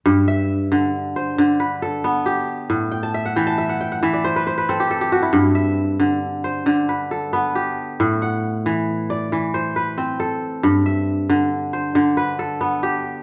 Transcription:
X:1
M:12/8
L:1/16
Q:3/8=91
K:G
V:1 name="Kora"
z2 e6 z2 c4 B2 A4 G4- | G2 g a e f g a e f g f e d c B c B A G A G F E- | E z e6 z2 c4 B2 A4 G4- | G2 f6 z2 d4 c2 B4 A4- |
A2 e6 z2 c4 B2 A4 G4 |]
V:2 name="Kora" clef=bass
G,,4 z2 D,4 z2 D,4 z2 B,4 z2 | A,,4 z2 E,4 z2 E,4 z2 C4 z2 | G,,4 z2 D,4 z2 D,4 z2 B,4 z2 | A,,4 z2 E,4 z2 E,4 z2 C4 z2 |
G,,4 z2 D,4 z2 D,4 z2 B,4 z2 |]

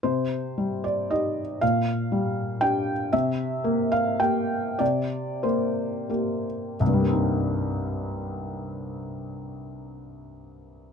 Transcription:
X:1
M:3/4
L:1/8
Q:1/4=97
K:Cm
V:1 name="Felt piano"
c3 d e2 | f4 g2 | =e3 f g2 | d2 c3 z |
[C,,G,,G,B,CE]6- | [C,,G,,G,B,CE]6 |]
V:2 name="Felt piano"
C,2 G,2 [EG]2 | B,,2 G,2 [DG]2 | C,2 B,2 [B,G]2 | C,2 B,2 [B,G]2 |
z6 | z6 |]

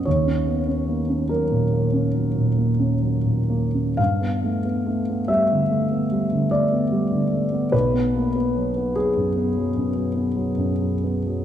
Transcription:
X:1
M:9/8
L:1/16
Q:3/8=48
K:D#m
V:1 name="Grand piano"
c6 A12 | =f6 =e6 =d6 | B6 G12 |]
V:2 name="Grand piano"
D,, C B, C A, C F, A,, A, C F, A,, A, C F, A,, A, C | =G,, B, =A, B, A, B, =G, =D, A, B, G, D, A, B, G, D, A, B, | B,,, B, A, B, F, B, F, F,, B, F, F,, F, B, F, F,, F, B, F, |]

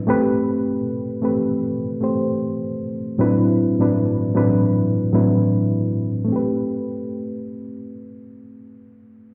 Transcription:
X:1
M:4/4
L:1/16
Q:"Swing 16ths" 1/4=77
K:Dmix
V:1 name="Reed electric piano"
[A,CGB]4 z2 [A,CGB]2 z2 [A,CGc]4 z2 | [A,,F,CDEB]2 z [A,,F,CDEB]2 z [A,,F,CDEB]2 z2 [A,,F,CDEB]4 z2 | [A,CGB]16 |]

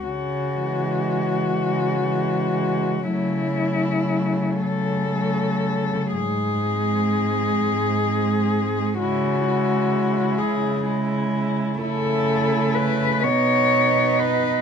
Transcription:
X:1
M:6/8
L:1/8
Q:3/8=41
K:C#m
V:1 name="Cello"
F6 | E3 A3 | G6 | F3 G z2 |
[K:Alyd] A2 B c2 B |]
V:2 name="Cello"
z G,3 G,2 | A, A,3 A,2 | z ^B,3 B,2 | E E3 E2 |
[K:Alyd] E3 D3 |]
V:3 name="Cello" clef=bass
z E,3 E,2 | F, F,3 F,2 | z G,3 G,2 | G, G,3 G,2 |
[K:Alyd] A,3 B,3 |]
V:4 name="Cello" clef=bass
C,3 C,3 | C,3 C,3 | G,,3 G,,3 | C,3 C,3 |
[K:Alyd] C,3 B,,3 |]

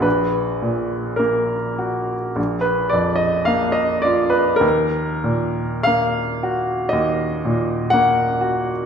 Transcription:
X:1
M:4/4
L:1/16
Q:1/4=53
K:Ebm
V:1 name="Grand piano"
c4 B4- B c =d e f e d c | B4 f4 e4 g4 |]
V:2 name="Grand piano" clef=bass
B,,,2 B,,2 B,2 G2 B,,,2 F,,2 B,2 F2 | E,,2 B,,2 B,2 G2 E,,2 B,,2 B,2 G2 |]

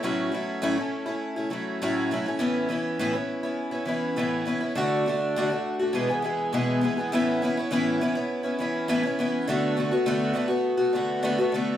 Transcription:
X:1
M:4/4
L:1/16
Q:1/4=102
K:A
V:1 name="Twelve-string acoustic guitar"
[A,,F,A,CE]2 [F,A,CE]2 [A,,F,A,CE] [A,CE]2 [A,CE]2 [A,CE] [F,A,CE]2 [A,,F,A,CE]2 [F,A,CE] [A,CE] | [A,,E,B,CE]2 [E,B,CE]2 [A,,E,B,CE] [B,CE]2 [B,CE]2 [B,CE] [E,B,CE]2 [A,,E,B,CE]2 [E,B,CE] [B,CE] | [D,A,DF]2 [D,A,DF]2 [D,A,DF] [A,DF]2 [A,DF] [E,,B,,E,G,B,G] [E,G,B,G] [E,G,B,G]2 [E,,B,,E,G,B,G]2 [E,G,B,G] [E,G,B,G] | [A,,E,B,CE]2 [E,B,CE] [B,CE] [A,,E,B,CE]2 [E,B,CE] [B,CE]2 [B,CE] [E,B,CE]2 [A,,E,B,CE] [B,CE] [E,B,CE]2 |
[D,A,B,F]2 [D,A,B,F] [A,B,F] [D,A,B,F]2 [D,A,B,F] [A,B,F]2 [A,B,F] [D,A,B,F]2 [D,A,B,F] [A,B,F] [D,A,B,F]2 |]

